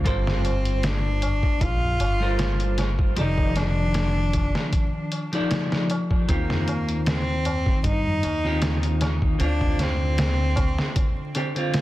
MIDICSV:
0, 0, Header, 1, 6, 480
1, 0, Start_track
1, 0, Key_signature, -2, "minor"
1, 0, Tempo, 779221
1, 34, Time_signature, 4, 2, 24, 8
1, 7277, End_track
2, 0, Start_track
2, 0, Title_t, "Clean electric guitar"
2, 0, Program_c, 0, 27
2, 25, Note_on_c, 0, 55, 67
2, 29, Note_on_c, 0, 65, 65
2, 36, Note_on_c, 0, 69, 60
2, 41, Note_on_c, 0, 70, 62
2, 44, Note_on_c, 0, 72, 83
2, 1328, Note_off_c, 0, 55, 0
2, 1330, Note_off_c, 0, 65, 0
2, 1333, Note_off_c, 0, 69, 0
2, 1335, Note_off_c, 0, 70, 0
2, 1337, Note_off_c, 0, 72, 0
2, 1355, Note_on_c, 0, 55, 84
2, 1360, Note_on_c, 0, 65, 85
2, 1364, Note_on_c, 0, 69, 79
2, 1370, Note_on_c, 0, 70, 81
2, 1374, Note_on_c, 0, 72, 96
2, 1923, Note_off_c, 0, 55, 0
2, 1926, Note_off_c, 0, 65, 0
2, 1928, Note_off_c, 0, 69, 0
2, 1931, Note_off_c, 0, 70, 0
2, 1933, Note_off_c, 0, 72, 0
2, 1948, Note_on_c, 0, 53, 71
2, 1953, Note_on_c, 0, 51, 65
2, 1957, Note_on_c, 0, 67, 70
2, 1962, Note_on_c, 0, 69, 62
2, 1965, Note_on_c, 0, 74, 78
2, 3249, Note_off_c, 0, 53, 0
2, 3252, Note_off_c, 0, 51, 0
2, 3254, Note_off_c, 0, 67, 0
2, 3256, Note_off_c, 0, 69, 0
2, 3258, Note_off_c, 0, 74, 0
2, 3279, Note_on_c, 0, 53, 84
2, 3283, Note_on_c, 0, 63, 82
2, 3288, Note_on_c, 0, 67, 82
2, 3292, Note_on_c, 0, 69, 84
2, 3296, Note_on_c, 0, 74, 103
2, 3845, Note_off_c, 0, 53, 0
2, 3847, Note_off_c, 0, 63, 0
2, 3850, Note_off_c, 0, 67, 0
2, 3852, Note_off_c, 0, 69, 0
2, 3854, Note_off_c, 0, 74, 0
2, 3870, Note_on_c, 0, 51, 72
2, 3875, Note_on_c, 0, 60, 67
2, 3881, Note_on_c, 0, 65, 66
2, 3887, Note_on_c, 0, 67, 77
2, 5170, Note_off_c, 0, 51, 0
2, 5173, Note_off_c, 0, 60, 0
2, 5176, Note_off_c, 0, 65, 0
2, 5179, Note_off_c, 0, 67, 0
2, 5197, Note_on_c, 0, 51, 91
2, 5201, Note_on_c, 0, 60, 83
2, 5207, Note_on_c, 0, 65, 88
2, 5214, Note_on_c, 0, 67, 104
2, 5764, Note_off_c, 0, 51, 0
2, 5766, Note_off_c, 0, 60, 0
2, 5769, Note_off_c, 0, 65, 0
2, 5773, Note_off_c, 0, 67, 0
2, 5784, Note_on_c, 0, 50, 69
2, 5792, Note_on_c, 0, 60, 67
2, 5801, Note_on_c, 0, 65, 82
2, 6967, Note_off_c, 0, 50, 0
2, 6971, Note_off_c, 0, 60, 0
2, 6975, Note_off_c, 0, 65, 0
2, 6994, Note_on_c, 0, 50, 81
2, 6998, Note_on_c, 0, 60, 75
2, 7002, Note_on_c, 0, 67, 87
2, 7092, Note_off_c, 0, 50, 0
2, 7094, Note_off_c, 0, 60, 0
2, 7096, Note_off_c, 0, 67, 0
2, 7116, Note_on_c, 0, 50, 80
2, 7125, Note_on_c, 0, 60, 71
2, 7134, Note_on_c, 0, 65, 85
2, 7277, Note_off_c, 0, 50, 0
2, 7277, Note_off_c, 0, 60, 0
2, 7277, Note_off_c, 0, 65, 0
2, 7277, End_track
3, 0, Start_track
3, 0, Title_t, "Cello"
3, 0, Program_c, 1, 42
3, 44, Note_on_c, 1, 60, 82
3, 529, Note_on_c, 1, 62, 95
3, 538, Note_off_c, 1, 60, 0
3, 1004, Note_on_c, 1, 65, 106
3, 1014, Note_off_c, 1, 62, 0
3, 1719, Note_off_c, 1, 65, 0
3, 1961, Note_on_c, 1, 63, 101
3, 2205, Note_on_c, 1, 62, 108
3, 2214, Note_off_c, 1, 63, 0
3, 3159, Note_off_c, 1, 62, 0
3, 3889, Note_on_c, 1, 58, 84
3, 4337, Note_off_c, 1, 58, 0
3, 4367, Note_on_c, 1, 60, 100
3, 4816, Note_off_c, 1, 60, 0
3, 4847, Note_on_c, 1, 63, 107
3, 5536, Note_off_c, 1, 63, 0
3, 5808, Note_on_c, 1, 62, 107
3, 6044, Note_on_c, 1, 60, 101
3, 6054, Note_off_c, 1, 62, 0
3, 6999, Note_off_c, 1, 60, 0
3, 7277, End_track
4, 0, Start_track
4, 0, Title_t, "Upright bass"
4, 0, Program_c, 2, 32
4, 34, Note_on_c, 2, 31, 87
4, 858, Note_off_c, 2, 31, 0
4, 992, Note_on_c, 2, 34, 79
4, 1206, Note_off_c, 2, 34, 0
4, 1231, Note_on_c, 2, 31, 74
4, 1931, Note_off_c, 2, 31, 0
4, 1952, Note_on_c, 2, 29, 90
4, 2777, Note_off_c, 2, 29, 0
4, 3873, Note_on_c, 2, 39, 86
4, 4698, Note_off_c, 2, 39, 0
4, 4830, Note_on_c, 2, 43, 83
4, 5045, Note_off_c, 2, 43, 0
4, 5070, Note_on_c, 2, 39, 76
4, 5771, Note_off_c, 2, 39, 0
4, 5792, Note_on_c, 2, 38, 91
4, 6617, Note_off_c, 2, 38, 0
4, 7277, End_track
5, 0, Start_track
5, 0, Title_t, "Tabla"
5, 44, Note_on_c, 9, 60, 58
5, 105, Note_off_c, 9, 60, 0
5, 171, Note_on_c, 9, 60, 38
5, 171, Note_on_c, 9, 64, 79
5, 232, Note_off_c, 9, 60, 0
5, 232, Note_off_c, 9, 64, 0
5, 278, Note_on_c, 9, 60, 91
5, 340, Note_off_c, 9, 60, 0
5, 408, Note_on_c, 9, 60, 30
5, 470, Note_off_c, 9, 60, 0
5, 513, Note_on_c, 9, 60, 52
5, 575, Note_off_c, 9, 60, 0
5, 756, Note_on_c, 9, 60, 92
5, 758, Note_on_c, 9, 64, 53
5, 818, Note_off_c, 9, 60, 0
5, 819, Note_off_c, 9, 64, 0
5, 887, Note_on_c, 9, 60, 36
5, 949, Note_off_c, 9, 60, 0
5, 994, Note_on_c, 9, 60, 53
5, 1056, Note_off_c, 9, 60, 0
5, 1129, Note_on_c, 9, 64, 79
5, 1131, Note_on_c, 9, 60, 38
5, 1191, Note_off_c, 9, 64, 0
5, 1193, Note_off_c, 9, 60, 0
5, 1237, Note_on_c, 9, 60, 79
5, 1298, Note_off_c, 9, 60, 0
5, 1369, Note_on_c, 9, 60, 40
5, 1431, Note_off_c, 9, 60, 0
5, 1480, Note_on_c, 9, 60, 49
5, 1542, Note_off_c, 9, 60, 0
5, 1607, Note_on_c, 9, 60, 33
5, 1668, Note_off_c, 9, 60, 0
5, 1720, Note_on_c, 9, 60, 77
5, 1782, Note_off_c, 9, 60, 0
5, 1848, Note_on_c, 9, 60, 39
5, 1909, Note_off_c, 9, 60, 0
5, 1960, Note_on_c, 9, 60, 53
5, 2022, Note_off_c, 9, 60, 0
5, 2088, Note_on_c, 9, 60, 33
5, 2089, Note_on_c, 9, 64, 75
5, 2149, Note_off_c, 9, 60, 0
5, 2151, Note_off_c, 9, 64, 0
5, 2197, Note_on_c, 9, 60, 99
5, 2258, Note_off_c, 9, 60, 0
5, 2328, Note_on_c, 9, 60, 39
5, 2389, Note_off_c, 9, 60, 0
5, 2438, Note_on_c, 9, 60, 49
5, 2499, Note_off_c, 9, 60, 0
5, 2676, Note_on_c, 9, 60, 83
5, 2738, Note_off_c, 9, 60, 0
5, 2807, Note_on_c, 9, 60, 37
5, 2868, Note_off_c, 9, 60, 0
5, 2913, Note_on_c, 9, 60, 50
5, 2975, Note_off_c, 9, 60, 0
5, 3041, Note_on_c, 9, 60, 35
5, 3103, Note_off_c, 9, 60, 0
5, 3155, Note_on_c, 9, 60, 84
5, 3217, Note_off_c, 9, 60, 0
5, 3284, Note_on_c, 9, 60, 39
5, 3345, Note_off_c, 9, 60, 0
5, 3395, Note_on_c, 9, 60, 48
5, 3457, Note_off_c, 9, 60, 0
5, 3528, Note_on_c, 9, 60, 37
5, 3589, Note_off_c, 9, 60, 0
5, 3640, Note_on_c, 9, 60, 87
5, 3701, Note_off_c, 9, 60, 0
5, 3766, Note_on_c, 9, 60, 42
5, 3828, Note_off_c, 9, 60, 0
5, 3877, Note_on_c, 9, 60, 63
5, 3938, Note_off_c, 9, 60, 0
5, 4008, Note_on_c, 9, 60, 37
5, 4010, Note_on_c, 9, 64, 78
5, 4069, Note_off_c, 9, 60, 0
5, 4071, Note_off_c, 9, 64, 0
5, 4119, Note_on_c, 9, 60, 97
5, 4181, Note_off_c, 9, 60, 0
5, 4248, Note_on_c, 9, 60, 35
5, 4309, Note_off_c, 9, 60, 0
5, 4360, Note_on_c, 9, 60, 54
5, 4422, Note_off_c, 9, 60, 0
5, 4596, Note_on_c, 9, 60, 94
5, 4596, Note_on_c, 9, 64, 53
5, 4658, Note_off_c, 9, 60, 0
5, 4658, Note_off_c, 9, 64, 0
5, 4727, Note_on_c, 9, 60, 35
5, 4788, Note_off_c, 9, 60, 0
5, 4842, Note_on_c, 9, 60, 50
5, 4903, Note_off_c, 9, 60, 0
5, 4968, Note_on_c, 9, 60, 33
5, 4968, Note_on_c, 9, 64, 71
5, 5029, Note_off_c, 9, 64, 0
5, 5030, Note_off_c, 9, 60, 0
5, 5077, Note_on_c, 9, 60, 94
5, 5138, Note_off_c, 9, 60, 0
5, 5205, Note_on_c, 9, 60, 39
5, 5267, Note_off_c, 9, 60, 0
5, 5317, Note_on_c, 9, 60, 47
5, 5378, Note_off_c, 9, 60, 0
5, 5444, Note_on_c, 9, 60, 34
5, 5506, Note_off_c, 9, 60, 0
5, 5555, Note_on_c, 9, 60, 90
5, 5617, Note_off_c, 9, 60, 0
5, 5685, Note_on_c, 9, 60, 39
5, 5746, Note_off_c, 9, 60, 0
5, 5796, Note_on_c, 9, 60, 56
5, 5857, Note_off_c, 9, 60, 0
5, 5922, Note_on_c, 9, 60, 39
5, 5922, Note_on_c, 9, 64, 77
5, 5984, Note_off_c, 9, 60, 0
5, 5984, Note_off_c, 9, 64, 0
5, 6032, Note_on_c, 9, 60, 94
5, 6093, Note_off_c, 9, 60, 0
5, 6159, Note_on_c, 9, 60, 38
5, 6221, Note_off_c, 9, 60, 0
5, 6269, Note_on_c, 9, 60, 53
5, 6331, Note_off_c, 9, 60, 0
5, 6505, Note_on_c, 9, 60, 92
5, 6566, Note_off_c, 9, 60, 0
5, 6642, Note_on_c, 9, 60, 36
5, 6703, Note_off_c, 9, 60, 0
5, 6754, Note_on_c, 9, 60, 49
5, 6816, Note_off_c, 9, 60, 0
5, 6881, Note_on_c, 9, 60, 37
5, 6942, Note_off_c, 9, 60, 0
5, 6992, Note_on_c, 9, 60, 85
5, 7053, Note_off_c, 9, 60, 0
5, 7119, Note_on_c, 9, 60, 34
5, 7181, Note_off_c, 9, 60, 0
5, 7230, Note_on_c, 9, 60, 52
5, 7277, Note_off_c, 9, 60, 0
5, 7277, End_track
6, 0, Start_track
6, 0, Title_t, "Drums"
6, 33, Note_on_c, 9, 36, 95
6, 35, Note_on_c, 9, 42, 81
6, 95, Note_off_c, 9, 36, 0
6, 96, Note_off_c, 9, 42, 0
6, 168, Note_on_c, 9, 38, 46
6, 230, Note_off_c, 9, 38, 0
6, 276, Note_on_c, 9, 42, 66
6, 337, Note_off_c, 9, 42, 0
6, 403, Note_on_c, 9, 42, 38
6, 465, Note_off_c, 9, 42, 0
6, 513, Note_on_c, 9, 42, 81
6, 516, Note_on_c, 9, 38, 104
6, 575, Note_off_c, 9, 42, 0
6, 578, Note_off_c, 9, 38, 0
6, 752, Note_on_c, 9, 42, 66
6, 814, Note_off_c, 9, 42, 0
6, 881, Note_on_c, 9, 36, 93
6, 942, Note_off_c, 9, 36, 0
6, 991, Note_on_c, 9, 36, 99
6, 992, Note_on_c, 9, 42, 80
6, 1053, Note_off_c, 9, 36, 0
6, 1054, Note_off_c, 9, 42, 0
6, 1232, Note_on_c, 9, 42, 61
6, 1293, Note_off_c, 9, 42, 0
6, 1472, Note_on_c, 9, 42, 77
6, 1475, Note_on_c, 9, 38, 105
6, 1533, Note_off_c, 9, 42, 0
6, 1536, Note_off_c, 9, 38, 0
6, 1601, Note_on_c, 9, 42, 39
6, 1663, Note_off_c, 9, 42, 0
6, 1711, Note_on_c, 9, 42, 66
6, 1714, Note_on_c, 9, 38, 44
6, 1773, Note_off_c, 9, 42, 0
6, 1776, Note_off_c, 9, 38, 0
6, 1840, Note_on_c, 9, 36, 93
6, 1902, Note_off_c, 9, 36, 0
6, 1950, Note_on_c, 9, 42, 83
6, 2011, Note_off_c, 9, 42, 0
6, 2080, Note_on_c, 9, 36, 90
6, 2141, Note_off_c, 9, 36, 0
6, 2191, Note_on_c, 9, 42, 68
6, 2194, Note_on_c, 9, 38, 42
6, 2252, Note_off_c, 9, 42, 0
6, 2255, Note_off_c, 9, 38, 0
6, 2429, Note_on_c, 9, 42, 81
6, 2432, Note_on_c, 9, 38, 98
6, 2491, Note_off_c, 9, 42, 0
6, 2494, Note_off_c, 9, 38, 0
6, 2670, Note_on_c, 9, 42, 64
6, 2671, Note_on_c, 9, 36, 89
6, 2732, Note_off_c, 9, 36, 0
6, 2732, Note_off_c, 9, 42, 0
6, 2804, Note_on_c, 9, 38, 46
6, 2865, Note_off_c, 9, 38, 0
6, 2911, Note_on_c, 9, 42, 78
6, 2912, Note_on_c, 9, 36, 104
6, 2973, Note_off_c, 9, 36, 0
6, 2973, Note_off_c, 9, 42, 0
6, 3152, Note_on_c, 9, 42, 62
6, 3213, Note_off_c, 9, 42, 0
6, 3282, Note_on_c, 9, 42, 37
6, 3344, Note_off_c, 9, 42, 0
6, 3392, Note_on_c, 9, 42, 75
6, 3395, Note_on_c, 9, 38, 108
6, 3454, Note_off_c, 9, 42, 0
6, 3457, Note_off_c, 9, 38, 0
6, 3524, Note_on_c, 9, 38, 53
6, 3586, Note_off_c, 9, 38, 0
6, 3632, Note_on_c, 9, 42, 68
6, 3694, Note_off_c, 9, 42, 0
6, 3761, Note_on_c, 9, 36, 88
6, 3823, Note_off_c, 9, 36, 0
6, 3872, Note_on_c, 9, 36, 100
6, 3872, Note_on_c, 9, 42, 77
6, 3934, Note_off_c, 9, 36, 0
6, 3934, Note_off_c, 9, 42, 0
6, 4004, Note_on_c, 9, 38, 44
6, 4066, Note_off_c, 9, 38, 0
6, 4112, Note_on_c, 9, 42, 63
6, 4174, Note_off_c, 9, 42, 0
6, 4241, Note_on_c, 9, 42, 40
6, 4303, Note_off_c, 9, 42, 0
6, 4352, Note_on_c, 9, 42, 80
6, 4355, Note_on_c, 9, 38, 99
6, 4413, Note_off_c, 9, 42, 0
6, 4416, Note_off_c, 9, 38, 0
6, 4591, Note_on_c, 9, 42, 61
6, 4652, Note_off_c, 9, 42, 0
6, 4720, Note_on_c, 9, 36, 92
6, 4782, Note_off_c, 9, 36, 0
6, 4830, Note_on_c, 9, 42, 81
6, 4831, Note_on_c, 9, 36, 101
6, 4892, Note_off_c, 9, 36, 0
6, 4892, Note_off_c, 9, 42, 0
6, 5070, Note_on_c, 9, 42, 62
6, 5132, Note_off_c, 9, 42, 0
6, 5308, Note_on_c, 9, 42, 79
6, 5311, Note_on_c, 9, 38, 106
6, 5369, Note_off_c, 9, 42, 0
6, 5373, Note_off_c, 9, 38, 0
6, 5440, Note_on_c, 9, 42, 42
6, 5501, Note_off_c, 9, 42, 0
6, 5549, Note_on_c, 9, 42, 66
6, 5552, Note_on_c, 9, 38, 43
6, 5611, Note_off_c, 9, 42, 0
6, 5614, Note_off_c, 9, 38, 0
6, 5679, Note_on_c, 9, 36, 87
6, 5741, Note_off_c, 9, 36, 0
6, 5789, Note_on_c, 9, 42, 80
6, 5850, Note_off_c, 9, 42, 0
6, 5920, Note_on_c, 9, 36, 93
6, 5981, Note_off_c, 9, 36, 0
6, 6032, Note_on_c, 9, 42, 66
6, 6035, Note_on_c, 9, 38, 41
6, 6093, Note_off_c, 9, 42, 0
6, 6096, Note_off_c, 9, 38, 0
6, 6271, Note_on_c, 9, 42, 85
6, 6274, Note_on_c, 9, 38, 111
6, 6333, Note_off_c, 9, 42, 0
6, 6336, Note_off_c, 9, 38, 0
6, 6510, Note_on_c, 9, 42, 63
6, 6511, Note_on_c, 9, 36, 93
6, 6572, Note_off_c, 9, 36, 0
6, 6572, Note_off_c, 9, 42, 0
6, 6643, Note_on_c, 9, 38, 46
6, 6705, Note_off_c, 9, 38, 0
6, 6750, Note_on_c, 9, 36, 102
6, 6750, Note_on_c, 9, 42, 88
6, 6812, Note_off_c, 9, 36, 0
6, 6812, Note_off_c, 9, 42, 0
6, 6990, Note_on_c, 9, 42, 64
6, 7052, Note_off_c, 9, 42, 0
6, 7122, Note_on_c, 9, 42, 40
6, 7183, Note_off_c, 9, 42, 0
6, 7229, Note_on_c, 9, 42, 82
6, 7233, Note_on_c, 9, 38, 110
6, 7277, Note_off_c, 9, 38, 0
6, 7277, Note_off_c, 9, 42, 0
6, 7277, End_track
0, 0, End_of_file